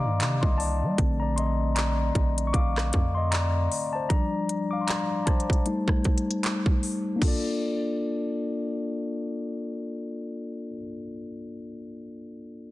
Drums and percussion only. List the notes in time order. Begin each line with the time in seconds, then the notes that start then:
0.20 clap, closed hi-hat
0.43 kick
0.60 open hi-hat
0.98 kick, closed hi-hat
1.38 closed hi-hat
1.76 clap, closed hi-hat
2.15 kick, closed hi-hat
2.38 closed hi-hat
2.54 kick, closed hi-hat
2.78 cross-stick, clap
2.93 kick, closed hi-hat
3.32 clap, closed hi-hat
3.72 open hi-hat
4.10 kick, closed hi-hat
4.49 closed hi-hat
4.88 clap, closed hi-hat
5.27 kick, cross-stick, closed hi-hat
5.40 closed hi-hat
5.50 kick, closed hi-hat
5.66 closed hi-hat
5.88 kick, cross-stick
6.04 kick, closed hi-hat
6.18 closed hi-hat
6.31 closed hi-hat
6.44 clap, closed hi-hat
6.66 kick
6.83 open hi-hat
7.22 kick, crash